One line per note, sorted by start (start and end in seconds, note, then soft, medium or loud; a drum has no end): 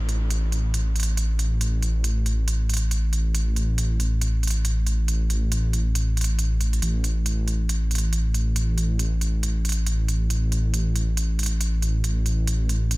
0.00 6.80 A1 medium
0.09 closed hi-hat soft
0.30 closed hi-hat medium
0.52 closed hi-hat medium
0.74 closed hi-hat medium
0.96 closed hi-hat soft
1.00 closed hi-hat medium
1.03 closed hi-hat medium
1.17 closed hi-hat medium
1.39 closed hi-hat medium
1.61 closed hi-hat medium
1.82 closed hi-hat soft
2.04 closed hi-hat medium
2.26 closed hi-hat soft
2.48 closed hi-hat medium
2.69 closed hi-hat soft
2.74 closed hi-hat medium
2.77 closed hi-hat medium
2.91 closed hi-hat medium
3.13 closed hi-hat soft
3.35 closed hi-hat medium
3.56 closed hi-hat soft
3.78 closed hi-hat medium
4.00 closed hi-hat soft
4.21 closed hi-hat medium
4.43 closed hi-hat soft
4.47 closed hi-hat medium
4.50 closed hi-hat medium
4.65 closed hi-hat medium
4.87 closed hi-hat soft
5.08 closed hi-hat medium
5.30 closed hi-hat soft
5.52 closed hi-hat medium
5.73 closed hi-hat soft
5.95 closed hi-hat medium
6.17 closed hi-hat soft
6.21 closed hi-hat medium
6.24 closed hi-hat medium
6.39 closed hi-hat medium
6.61 closed hi-hat soft
6.73 closed hi-hat soft
6.82 12.97 A1 medium
6.82 closed hi-hat medium
7.04 closed hi-hat soft
7.26 closed hi-hat medium
7.48 closed hi-hat soft
7.69 closed hi-hat medium
7.91 closed hi-hat soft
7.95 closed hi-hat medium
7.98 closed hi-hat medium
8.13 closed hi-hat medium
8.34 closed hi-hat soft
8.56 closed hi-hat medium
8.78 closed hi-hat soft
8.99 closed hi-hat medium
9.21 closed hi-hat soft
9.43 closed hi-hat medium
9.65 closed hi-hat soft
9.69 closed hi-hat medium
9.72 closed hi-hat medium
9.87 closed hi-hat medium
10.08 closed hi-hat soft
10.30 closed hi-hat medium
10.52 closed hi-hat soft
10.74 closed hi-hat medium
10.96 closed hi-hat soft
11.17 closed hi-hat medium
11.39 closed hi-hat soft
11.43 closed hi-hat medium
11.46 closed hi-hat medium
11.61 closed hi-hat medium
11.82 closed hi-hat soft
12.04 closed hi-hat medium
12.26 closed hi-hat soft
12.47 closed hi-hat medium
12.69 closed hi-hat medium
12.91 closed hi-hat medium